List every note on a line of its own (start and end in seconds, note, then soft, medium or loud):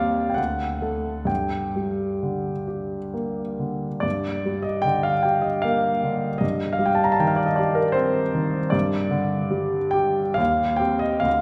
0.00 0.35 D#2 soft
0.00 0.34 C4 soft
0.00 0.34 G4 soft
0.00 0.40 D5 medium
0.00 0.29 F5 medium
0.30 0.37 G5 soft
0.34 1.26 D2 soft
0.34 1.27 F#5 medium
0.81 1.25 A3 soft
0.81 1.25 A4 soft
1.25 3.99 G2 soft
1.25 3.13 G5 soft
1.76 2.50 G3 soft
2.23 2.96 D3 soft
2.68 3.41 G4 soft
3.14 3.87 A#3 soft
3.59 4.04 D3 soft
4.00 6.38 G2 soft
4.00 4.65 D5 medium
4.46 5.11 G3 soft
4.62 4.85 D#5 medium
4.82 5.49 D3 soft
4.82 5.05 G5 medium
5.03 5.25 F5 medium
5.23 5.88 G4 soft
5.23 5.44 G5 medium
5.41 5.64 D#5 soft
5.62 6.27 A#3 soft
5.62 6.41 F5 medium
6.03 6.42 D3 soft
6.38 8.69 G2 soft
6.38 6.75 D#5 medium
6.73 6.89 F5 medium
6.79 7.42 G3 soft
6.86 6.99 G5 medium
6.95 7.07 A5 soft
7.04 7.14 A#5 medium
7.12 7.22 A5 medium
7.19 7.82 D#3 soft
7.19 7.29 G5 medium
7.27 7.38 F5 medium
7.36 7.47 D5 soft
7.46 7.57 D#5 soft
7.56 8.20 G4 soft
7.56 7.77 D5 medium
7.75 7.96 A#4 medium
7.92 8.57 C4 soft
7.92 8.71 C5 medium
8.35 8.73 D#3 soft
8.70 10.34 G2 soft
8.70 9.94 D5 medium
9.11 9.78 D3 soft
9.51 10.20 G3 soft
9.91 10.38 G4 soft
9.91 10.37 G5 medium
10.34 11.22 D#2 soft
10.34 10.80 F5 medium
10.77 11.20 C4 soft
10.77 11.20 G4 soft
10.77 11.01 G5 medium
10.99 11.23 D#5 medium
11.20 11.41 D2 soft
11.20 11.41 F5 medium